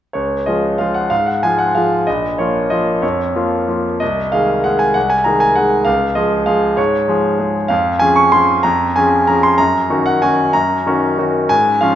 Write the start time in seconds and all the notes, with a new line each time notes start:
0.13 C#2 C#5
0.46 F3 G#3 F4 D#5
0.78 F3 G#3 F4 F5
0.94 F#5
1.10 G#2 F5
1.26 F#5
1.43 F3 G#3 F4 G#5
1.58 F#5
1.75 F3 G#3 F4 F5
2.07 A#1 D#5
2.38 F3 A#3 F4 C#5
2.70 F3 A#3 F4 D#5
3.02 F2 C#5
3.35 F3 A#3 F4
3.68 F3 A#3 F4
4.00 C2 D#5
4.32 D#3 G#3 G#4 F5
4.64 D#3 G#3 G#4 F#5
4.79 G#5
4.94 C2 F#5
5.10 G#5
5.24 D#3 G#3 G#4 A#5
5.40 G#5
5.56 D#3 G#3 G#4 F#5
5.85 C#2 F5
6.15 F3 G#3 G#4 D#5
6.46 F3 G#3 G#4 F5
6.77 G#2 C#5
7.08 F3 G#3 G#4
7.39 F3 G#3 G#4
7.68 F2 F5
7.99 F3 C#4 G#4 G#5
8.16 C#6
8.32 F3 C#4 G#4 C6
8.63 F2 A#5
8.96 F3 C#4 G#4 G#5
9.27 F3 C#4 G#4 A#5
9.43 C6
9.58 F#2 A#5
9.90 D#3 C#4 F#4
10.06 F#5
10.22 D#3 C#4 F#4 G#5
10.53 F#2 A#5
10.87 D#3 C#4 F#4
11.18 D#3 C#4 F#4
11.49 G#2 G#5
11.81 F3 C#4 F4 F5